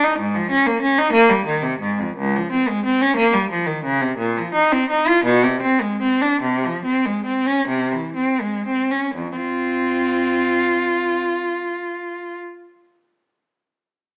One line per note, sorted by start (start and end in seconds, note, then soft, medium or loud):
0.04 0.20 D#4 medium
0.19 0.35 G#2 medium
0.35 0.51 F3 medium
0.51 0.67 C#4 medium
0.67 0.83 A#3 medium
0.82 0.98 C#4 medium
0.99 1.15 D#4 medium
1.13 1.30 A#3 medium
1.29 1.47 G3 medium
1.46 1.63 D#3 medium
1.63 1.82 C3 medium
1.80 1.99 G#2 medium
1.99 2.18 F2 medium
2.17 2.35 C#2 medium
2.36 2.53 F3 medium
2.52 2.69 C4 medium
2.69 2.86 G#3 medium
2.85 3.02 C4 medium
3.02 3.19 C#4 medium
3.16 3.34 A#3 medium
3.34 3.52 G3 medium
3.50 3.68 F3 medium
3.67 3.85 D#3 medium
3.84 4.02 C#3 medium
4.02 4.20 C3 medium
4.18 4.36 A#2 medium
4.37 4.55 F3 medium
4.54 4.72 D#4 medium
4.73 4.90 C4 medium
4.90 5.07 D#4 medium
5.07 5.25 F4 medium
5.24 5.43 B2 medium
5.43 5.62 C3 medium
5.62 5.81 C4 medium
5.82 6.02 G#3 medium
6.02 6.22 C4 medium
6.21 6.43 D4 medium
6.42 6.63 C3 medium
6.64 6.85 F3 medium
6.85 7.05 C4 medium
7.06 7.27 G#3 medium
7.26 7.47 C4 medium
7.47 7.69 C#4 medium
7.68 7.91 C3 medium
7.92 8.16 E3 medium
8.16 8.41 C4 medium
8.41 8.67 G#3 medium
8.67 8.92 C4 medium
8.91 9.16 C#4 medium
9.15 9.38 F2 medium
9.36 11.19 C4 medium
9.36 12.38 F4 medium